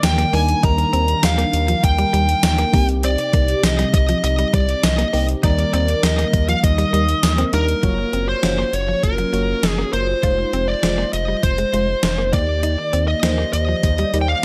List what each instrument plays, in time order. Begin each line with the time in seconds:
Already playing: fm electric piano D#3 G3 A#3 D#4 A#4
0.03 analog synth bass D#2, lead electric guitar G5, muted clean electric guitar stroke, snare, closed hi-hat, tambourine
0.18 clean electric guitar A#3, closed hi-hat
0.33 analog synth bass D#2, fm electric piano G3 A#3 D4 D#4 A#4, clean electric guitar A#3, lead electric guitar G#5, open hi-hat
0.49 closed hi-hat
0.63 analog synth bass D#2, fm electric piano D#3 G3 A#3 D4 D#4 A#4, clean electric guitar D#4, lead electric guitar A#5, kick, closed hi-hat
0.78 muted clean electric guitar stroke, closed hi-hat
0.93 analog synth bass D#2, clean electric guitar C4, closed hi-hat
1.08 closed hi-hat
1.23 analog synth bass D#2, lead electric guitar F5, snare, closed hi-hat, tambourine
1.38 clean electric guitar A#3, closed hi-hat
1.53 analog synth bass D#2, muted clean electric guitar stroke, closed hi-hat
1.68 clean electric guitar F3, closed hi-hat
1.83 analog synth bass D#2, lead electric guitar G5, muted clean electric guitar stroke, kick, closed hi-hat
1.98 clean electric guitar G3, closed hi-hat
2.13 analog synth bass D#2, clean electric guitar G3, closed hi-hat
2.29 closed hi-hat
2.43 analog synth bass D#2, lead electric guitar G5, muted clean electric guitar stroke, snare, closed hi-hat, tambourine
2.58 clean electric guitar A#3, closed hi-hat
2.73 analog synth bass C2, fm electric piano C3 C4 D#4 G4, clean electric guitar A#3, kick, open hi-hat
2.89 closed hi-hat
3.03 clean electric guitar C4, lead electric guitar D5, closed hi-hat
3.18 muted clean electric guitar stroke, closed hi-hat
3.33 analog synth bass C2, clean electric guitar A#3, kick, closed hi-hat
3.48 closed hi-hat
3.63 analog synth bass C2, lead electric guitar D#5, snare, closed hi-hat, tambourine
3.79 clean electric guitar G3, closed hi-hat
3.94 analog synth bass C2, lead electric guitar D#5, muted clean electric guitar stroke, kick, closed hi-hat
4.09 clean electric guitar F3, closed hi-hat
4.24 analog synth bass C2, lead electric guitar D#5, muted clean electric guitar stroke, closed hi-hat
4.39 clean electric guitar G3, closed hi-hat
4.53 analog synth bass C2, clean electric guitar G3, lead electric guitar D5, kick, closed hi-hat
4.69 closed hi-hat
4.83 analog synth bass C2, lead electric guitar D#5, muted clean electric guitar stroke, snare, closed hi-hat, tambourine
4.98 clean electric guitar A#3, closed hi-hat
5.13 analog synth bass C2, clean electric guitar A#3, fm electric piano C4 D#4 G4, open hi-hat
5.29 closed hi-hat
5.43 analog synth bass D#2, fm electric piano D#3 G3 A#3 D#4 A#4, clean electric guitar D#4, lead electric guitar D5, kick, closed hi-hat
5.58 muted clean electric guitar stroke, closed hi-hat
5.73 analog synth bass D#2, clean electric guitar C4, lead electric guitar D5, closed hi-hat
5.88 closed hi-hat
6.03 analog synth bass D#2, lead electric guitar D#5, snare, closed hi-hat, tambourine
6.18 clean electric guitar A#3, closed hi-hat
6.33 analog synth bass D#2, muted clean electric guitar stroke, kick, closed hi-hat
6.48 clean electric guitar F3, lead electric guitar F5, closed hi-hat
6.63 analog synth bass D#2, lead electric guitar D#5, muted clean electric guitar stroke, kick, closed hi-hat
6.78 clean electric guitar G3, closed hi-hat
6.93 analog synth bass D#2, clean electric guitar G3, closed hi-hat
7.09 closed hi-hat
7.23 analog synth bass D#2, muted clean electric guitar stroke, snare, closed hi-hat, tambourine
7.38 clean electric guitar C4, closed hi-hat
7.53 analog synth bass D#2, fm electric piano G3 A#3 D4 D#4 A#4, clean electric guitar A#3, lead electric guitar A#4, closed hi-hat
7.68 closed hi-hat
7.83 analog synth bass F#1, clean electric guitar F#3, fm electric piano A#3 F4 F#4 C#5, kick, closed hi-hat
7.98 muted clean electric guitar stroke
8.13 analog synth bass F#1, clean electric guitar C4, closed hi-hat
8.29 lead electric guitar C5
8.43 analog synth bass F#1, fm electric piano A#3 C#4 F4 F#4, snare, closed hi-hat
8.58 clean electric guitar A#3
8.73 analog synth bass F#1, lead electric guitar C#5, muted clean electric guitar stroke, closed hi-hat
8.88 clean electric guitar F3
9.03 analog synth bass F#1, lead electric guitar A#4, muted clean electric guitar stroke, kick, closed hi-hat
9.18 clean electric guitar F#3, closed hi-hat
9.33 analog synth bass F#1, clean electric guitar F#3, fm electric piano A#3 F4 F#4 C#5, closed hi-hat
9.63 analog synth bass F#1, muted clean electric guitar stroke, snare, closed hi-hat
9.69 lead electric guitar G#4
9.78 clean electric guitar A#3
9.93 analog synth bass F#1, clean electric guitar A#3, lead electric guitar C5, closed hi-hat
10.23 analog synth bass F1, fm electric piano G#3 D#4 F4 C5, clean electric guitar F4, kick, closed hi-hat
10.39 muted clean electric guitar stroke
10.53 analog synth bass F1, clean electric guitar C4, closed hi-hat
10.68 lead electric guitar D5
10.82 analog synth bass F1, fm electric piano G#3 D#4 F4 C5, snare, closed hi-hat
10.98 clean electric guitar A#3
11.13 analog synth bass F1, lead electric guitar D#5, muted clean electric guitar stroke, closed hi-hat
11.28 clean electric guitar G3
11.43 analog synth bass F1, lead electric guitar C5, muted clean electric guitar stroke, kick, closed hi-hat
11.58 clean electric guitar G#3, closed hi-hat
11.73 analog synth bass F1, fm electric piano G#3 D#4 F4 C5, clean electric guitar G#3, closed hi-hat
12.03 analog synth bass F1, muted clean electric guitar stroke, snare, closed hi-hat
12.18 clean electric guitar A#3
12.32 analog synth bass D#2, fm electric piano D#3 A#3 D#4 G4 D5, clean electric guitar A#3, lead electric guitar D5, kick, closed hi-hat
12.63 clean electric guitar D#4, closed hi-hat
12.78 muted clean electric guitar stroke
12.93 analog synth bass D#2, clean electric guitar C4, closed hi-hat
13.08 lead electric guitar D#5
13.23 analog synth bass D#2, fm electric piano A#3 D#4 G4 C5, snare, closed hi-hat
13.38 clean electric guitar A#3
13.53 analog synth bass D#2, lead electric guitar D#5, muted clean electric guitar stroke, closed hi-hat
13.69 clean electric guitar F3
13.83 analog synth bass D#2, muted clean electric guitar stroke, kick, closed hi-hat
13.98 clean electric guitar G3, closed hi-hat
14.13 analog synth bass D#2, clean electric guitar G3, fm electric piano A#3 D#4 G4 D5, closed hi-hat
14.21 lead electric guitar G5
14.28 lead electric guitar F5